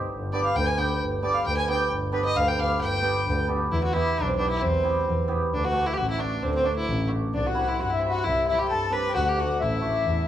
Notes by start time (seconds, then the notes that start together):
0.10 G1
0.32 B3 D4 G4 D5 D6
0.43 F5 F6
0.55 D2 G5 G6
0.65 G#5 G#6
0.77 B3 D4 G4 G5 G6
1.01 G1
1.22 B3 D4 G4 D5 D6
1.34 F5 F6
1.45 D2 G5 G6
1.57 G#5 G#6
1.68 B3 D4 G4 G5 G6
1.90 G1
2.12 B3 D4 G4 B4 B5
2.25 D#5 D#6
2.36 D2 F5 F6
2.48 G5
2.57 B3 D4 G4 F5 F6
2.81 G1 G5 G6
3.02 B3 D4 G4
3.27 D2
3.47 B3 D4 G4
3.71 E2 E4
3.83 F#4
3.93 B3 E4 G4
4.17 B1 D4
4.27 C4
4.38 B3 D4 E4 G4
4.50 E4
4.61 E2 C4
4.83 B3 E4 G4
5.07 E2
5.28 B3 E4 G4
5.52 D2 D4
5.64 F#4
5.72 A3 D4 F#4
5.86 E4
5.94 A1 F#4 G4
6.10 E4
6.18 A3 D4 F#4
6.42 D2 C4
6.54 C4
6.63 A3 D4 F#4
6.76 E4
6.88 A1
7.07 A3 D4 F#4
7.34 C2 D4 D5
7.45 F#4 F#5
7.54 G3 C4 E4
7.68 E4
7.79 G2 F#4 F#5
7.89 E4 E5
7.99 G3 C4 E4
8.08 F#4 F#5
8.24 C2 E4 E5
8.45 G3 C4 E4 E5
8.59 G4 G5
8.68 G2 A4 A5
8.90 G3 C4 D4 B4 B5
9.09 G5
9.15 D2 F#4 F#5
9.28 G4
9.37 A3 D4 F#4
9.60 A1 E4 E5
9.81 A3 D4 F#4
10.05 E2